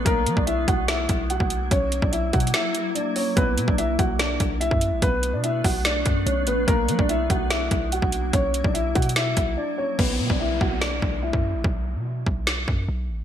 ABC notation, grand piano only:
X:1
M:4/4
L:1/16
Q:1/4=145
K:Bm
V:1 name="Grand piano"
[^A,^A]3 [Dd] [Ee]2 [Ff]2 [Ee]4 [Ff]4 | [Cc]3 [Dd] [Ee]2 [Ff]2 [Ee]4 [Dd]2 [Cc]2 | [B,B]3 [Dd] [Ee]2 [Ff]2 [Dd]4 [Ee]4 | [B,B]3 [Dd] [Ee]2 [Ff]2 [Dd]4 [Cc]2 [B,B]2 |
[^A,^A]3 [Dd] [Ee]2 [Ff]2 [Ee]4 [Ff]4 | [Cc]3 [Dd] [Ee]2 [Ff]2 [Ee]4 [Dd]2 [Cc]2 | [B,B]3 [Dd] [Ee]2 [Ff]2 [Dd]4 [Ee]4 | z16 |]